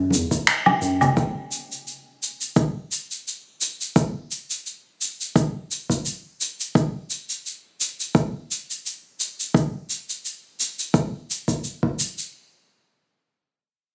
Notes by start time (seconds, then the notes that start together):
Already playing: F#2
0.11 E2, high conga, shaker
0.31 kick, shaker
0.47 finger snap, shaker
0.66 high conga, low woodblock
0.81 F#2, shaker
1.01 low conga, low woodblock, shaker
1.17 kick, shaker
1.52 shaker
1.72 shaker
1.87 shaker
2.23 shaker
2.41 shaker
2.56 kick, shaker
2.92 shaker
3.11 shaker
3.28 shaker
3.61 shaker
3.81 shaker
3.96 kick, shaker
4.31 shaker
4.50 shaker
4.66 shaker
5.01 shaker
5.21 shaker
5.36 kick, shaker
5.71 shaker
5.90 kick, shaker
6.06 shaker
6.41 shaker
6.60 shaker
6.75 kick, shaker
7.10 shaker
7.29 shaker
7.46 shaker
7.81 shaker
8.00 shaker
8.15 kick, shaker
8.51 shaker
8.71 shaker
8.86 shaker
9.20 shaker
9.40 shaker
9.54 kick, shaker
9.90 shaker
10.09 shaker
10.25 shaker
10.60 shaker
10.79 shaker
10.94 kick, shaker
11.30 shaker
11.48 kick, shaker
11.64 shaker
11.83 kick
11.99 shaker
12.18 shaker